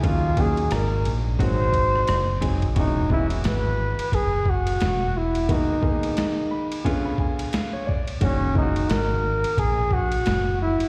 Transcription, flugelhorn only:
X:1
M:4/4
L:1/8
Q:"Swing 16ths" 1/4=88
K:E
V:1 name="Flugelhorn"
^E G ^A z ^B3 z | D E B2 G F2 E | D4 z4 | C D ^A2 G F2 E |]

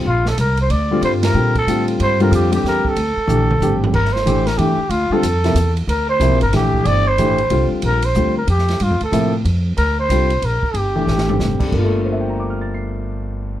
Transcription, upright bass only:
X:1
M:3/4
L:1/8
Q:"Swing" 1/4=185
K:Gdor
V:1 name="Upright bass" clef=bass
B,,,2 C,,2 D,,2 | G,,2 B,,2 A,,2 | G,,2 F,,2 E,, z | D,, z B,,,2 A,,,2 |
G,,,2 A,,,2 E,, z | D,, z F,,2 E,,2 | D,,2 (3C,, B,,, G,,, B,,,2 | G,,,2 A,,,2 C,, z |
B,,,2 D,,2 F,,2 | (3G,, F,, D,, A,,2 F,,2 | D,,2 C,,2 B,,, z | G,,,2 A,,,2 F,,, z |
G,,,6- | G,,,6 |]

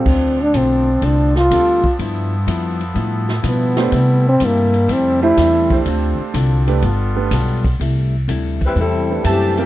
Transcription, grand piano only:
X:1
M:4/4
L:1/8
Q:"Swing" 1/4=124
K:C
V:1 name="Grand piano"
z6 [G,CFA] z | z6 z [A,DGc] | z4 z [A,DGc]2 [A,DGc]- | [A,DGc]2 z [A,DGB] z [A,DGB] z2 |
z4 z [A,DGB]2 [G,CF_B] |]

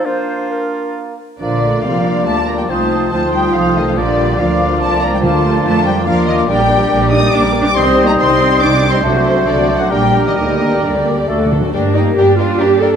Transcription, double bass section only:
X:1
M:3/4
L:1/8
Q:1/4=140
K:Bb
V:1 name="Double bass section" clef=bass
z6 | B,,,2 C,,2 D,,2 | C,,2 D,,2 C,,2 | B,,,2 D,,2 C,,2 |
D,,2 F,,2 E,,2 | [K:Gm] B,,,2 B,,,2 B,,,2 | C,,2 C,,2 C,,2 | C,,2 C,,2 B,,,2 |
D,,2 D,,2 D,,2 | G,,2 G,,2 G,,2 |]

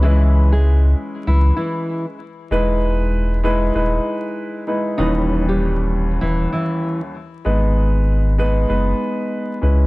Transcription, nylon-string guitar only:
X:1
M:4/4
L:1/16
Q:"Swing 16ths" 1/4=97
K:G#m
V:1 name="Nylon-string guitar"
[E,E]3 [G,G]4- [G,G] [E,E]2 [E,E]3 z3 | z16 | [Dd]3 [=G,=G]4- [G,G] [E,E]2 [E,E]3 z3 | z16 |]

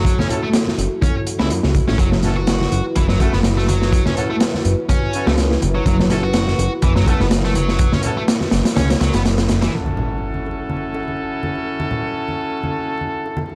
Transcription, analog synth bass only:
X:1
M:4/4
L:1/16
Q:"Swing 16ths" 1/4=124
K:F#m
V:1 name="Analog synth bass" clef=bass
F,,, z4 z F,,, z4 C,, F,, C,,2 A,,, | F,,,6 F,,, z F,,,3 F,,,4- F,,,- | F,,, z4 z F,,, z4 C,,3 F,,,2 | F,,,6 F,,, z F,,,3 F,,,4- F,,,- |
F,,, z4 z F,,, z C,,2 C,, F,,,4- F,,, | z16 | z16 |]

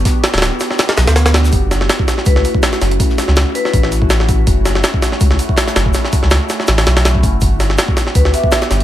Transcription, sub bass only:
X:1
M:4/4
L:1/16
Q:"Swing 16ths" 1/4=163
K:F#phr
V:1 name="Sub bass" clef=bass
z3 D,,,2 z4 z B,,, D,,4- D,, | F,,,4 z4 C,,2 z4 F,,,2 | z3 C,,2 z3 A,,,8 | F,,,4 z4 C,,2 z4 F,,,2 |
z3 C,,2 z3 A,,,2 B,,,4 F,,,2 | G,,,4 z4 D,,2 z4 G,,,2 |]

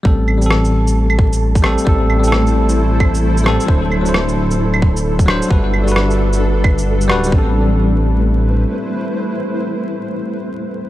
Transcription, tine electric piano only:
X:1
M:4/4
L:1/16
Q:"Swing 16ths" 1/4=132
K:Ador
V:1 name="Tine electric piano"
[G,CA]3 [G,CA]8- [G,CA]3 [G,CA]2 | [G,CA]3 [G,CA]8- [G,CA]3 [G,CA]2 | [F,Dc]3 [F,Dc]8- [F,Dc]3 [F,Dc]2 | [G,FB]3 [G,FB]8- [G,FB]3 [G,FB]2 |
[G,CA]16- | [G,CA]16 |]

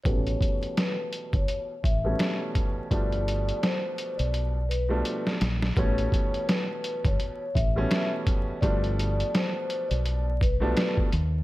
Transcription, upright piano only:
X:1
M:4/4
L:1/16
Q:"Swing 16ths" 1/4=84
K:Am
V:1 name="Upright piano" clef=bass
[B,,E,G,A,^C]8- [B,,E,G,A,C] z2 [B,,E,G,A,C]4- [B,,E,G,A,C] | [B,,F,G,A,D]8- [B,,F,G,A,D] z2 [B,,F,G,A,D]3 z2 | [B,,E,G,A,^C]8- [B,,E,G,A,C] z2 [B,,E,G,A,C]4- [B,,E,G,A,C] | [B,,F,G,A,D]8- [B,,F,G,A,D] z2 [B,,F,G,A,D]3 z2 |]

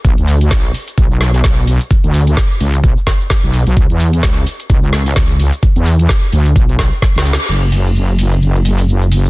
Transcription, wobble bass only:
X:1
M:4/4
L:1/16
Q:"Swing 16ths" 1/4=129
K:C#phr
V:1 name="Wobble bass" clef=bass
B,,, D,,3 B,,,2 z2 B,,,4 B,,,3 z | z D,,3 z2 C,,2 B,,, z4 B,,,2 B,,, | C,, E,,3 C,,2 z2 C,,4 C,,3 z | z E,,3 z2 D,,2 B,,,3 z2 C,,2 z |
F,,,16 |]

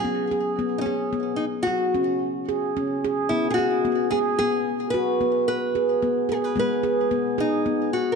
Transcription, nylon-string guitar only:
X:1
M:3/4
L:1/16
Q:1/4=110
K:G#m
V:1 name="Nylon-string guitar"
G4 z3/2 D/2 C4 D2 | F8 z4 | E3/2 G/2 F4 G2 G4 | B4 B6 G B |
B4 z2 D4 F3/2 A/2 |]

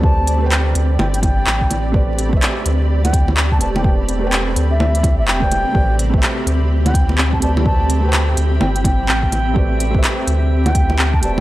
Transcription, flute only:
X:1
M:4/4
L:1/16
Q:"Swing 16ths" 1/4=126
K:Am
V:1 name="Flute"
a3 z4 z g g g6 | z8 z g2 z2 a a g | g z6 e4 e g4- | g2 z6 z g2 z2 a a z |
a3 z4 z g g g6 | z8 z g2 z2 a a g |]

